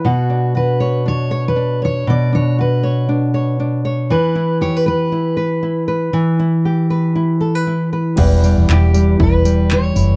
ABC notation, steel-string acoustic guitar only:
X:1
M:4/4
L:1/16
Q:"Swing 16ths" 1/4=118
K:Edor
V:1 name="Steel-string acoustic guitar"
F4 B4 c3 B3 c2 | d2 c2 B4 z8 | B4 c B B8- B2- | B12 z4 |
z4 G4 B4 c4 |]